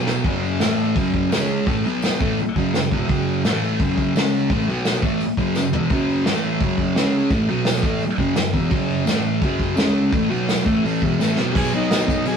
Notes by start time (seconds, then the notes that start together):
Already playing: B2 F#3 B3
0.07 snare, tambourine
0.24 F#2 C#3 F#3, kick, open hi-hat
0.42 open hi-hat
0.60 A2 E3 A3, snare, open hi-hat, tambourine
0.78 open hi-hat
0.96 F#2 C#3 F#3, kick, open hi-hat
1.14 kick, open hi-hat
1.31 C#3 G#3 C#4, snare, open hi-hat, tambourine
1.49 open hi-hat
1.67 A2 E3 A3, kick, open hi-hat
1.85 B2 F#3 B3, open hi-hat
2.02 snare, open hi-hat, tambourine
2.20 A2 E3 A3, kick, open hi-hat
2.38 muted distorted electric guitar stroke, open hi-hat
2.56 F#2 C#3 F#3, kick, open hi-hat
2.74 F#2 C#3, snare, open hi-hat, tambourine
2.91 E2 B2 E3, kick, open hi-hat
3.09 F#2 C#3 F#3, kick, open hi-hat
3.28 open hi-hat
3.44 A2 E3 A3, snare, open hi-hat, tambourine
3.62 open hi-hat
3.80 F#2 C#3 F#3, kick, open hi-hat
3.98 kick, open hi-hat
4.15 C#3 G#3 C#4, snare, open hi-hat, tambourine
4.33 open hi-hat
4.50 A2 E3 A3, kick, open hi-hat
4.68 B2 F#3 B3, open hi-hat
4.85 snare, open hi-hat, tambourine
5.02 A2 E3 A3, kick, open hi-hat
5.20 muted distorted electric guitar stroke, open hi-hat
5.37 F#2 C#3 F#3, kick, open hi-hat
5.55 F#2 C#3, snare, tambourine
5.73 E2 B2 E3, floor tom
5.90 F#2 C#3 F#3, kick, open hi-hat
6.09 open hi-hat
6.26 A2 E3 A3, snare, tambourine
6.44 open hi-hat
6.61 F#2 C#3 F#3, kick, open hi-hat
6.78 kick, open hi-hat
6.96 C#3 G#3 C#4, snare, open hi-hat, tambourine
7.13 open hi-hat
7.30 A2 E3 A3, kick, open hi-hat
7.48 B2 F#3 B3, open hi-hat
7.65 snare, open hi-hat, tambourine
7.83 A2 E3 A3, kick, open hi-hat
8.00 muted distorted electric guitar stroke, open hi-hat
8.18 F#2 C#3 F#3, kick, open hi-hat
8.35 F#2 C#3, snare, open hi-hat, tambourine
8.53 E2 B2 E3, kick, open hi-hat
8.70 F#2 C#3 F#3, kick, open hi-hat
8.90 open hi-hat
9.06 A2 E3 A3, snare, open hi-hat, tambourine
9.24 open hi-hat
9.42 F#2 C#3 F#3, kick, open hi-hat
9.59 kick, open hi-hat
9.76 C#3 G#3 C#4, snare, open hi-hat, tambourine
9.96 open hi-hat
10.12 A2 E3 A3, kick, open hi-hat
10.29 B2 F#3 B3, open hi-hat
10.48 snare, open hi-hat, tambourine
10.64 A2 E3 A3, kick, open hi-hat
10.83 A2 E3 A3, open hi-hat
11.02 E2 B2 E3, kick, open hi-hat
11.20 A2 E3 A3, snare, tambourine
11.36 B2 F#3 B3, snare
11.51 B2 F#3 G4
11.55 B3 G#4, kick, crash, tambourine
11.65 tambourine
11.73 B2 F#3 B3 D#4
11.91 B2 F#3 B3, snare, tambourine, crash
12.02 tambourine
12.08 B2 F#3 B3, kick, tambourine
12.25 B2 F#3 B3 G#4, crash